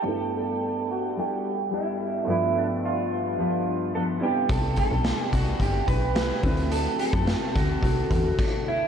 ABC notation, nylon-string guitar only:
X:1
M:4/4
L:1/8
Q:1/4=108
K:G
V:1 name="Nylon-string guitar"
[G,B,EA]4 [G,B,EA]2 [G,B,EA]2 | [G,,=F,B,D]4 [G,,F,B,D]2 [G,,F,B,D] [C,G,B,E]- | [C,G,B,E]4 [C,G,B,E]2 [C,G,B,E] [D,A,CF]- | [D,A,CF] [A,CF]3 [D,A,CF]2 z2 |]